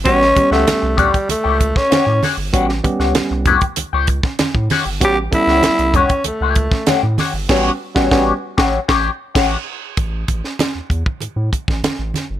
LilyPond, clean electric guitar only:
\new Staff \with { instrumentName = "Clean electric guitar" } { \time 4/4 \key a \mixolydian \tempo 4 = 97 <g' cis'' fis''>16 r8 <g' cis'' fis''>16 r8 <g' cis'' fis''>16 r8 <g' cis'' g''>16 r8 <g' cis'' fis''>16 r16 <g' cis'' fis''>16 r16 | <g' cis'' fis''>16 r8 <g' cis'' fis''>16 r8 <g' cis'' fis''>16 r8 <g' cis'' g''>16 r4 <g' cis'' fis''>16 r16 | <g' cis'' fis''>16 r8 <g' cis'' fis''>16 r8 <g' cis'' fis''>16 r8 <g' cis'' g''>16 r8 <g' cis'' fis''>16 r16 <g' cis'' fis''>16 r16 | <g' cis'' fis''>8 r16 <g' cis'' fis''>16 <g' cis'' fis''>8 r16 <g' cis'' fis''>8 <g' cis'' g''>8 r16 <g' cis'' fis''>8 r8 |
r1 | }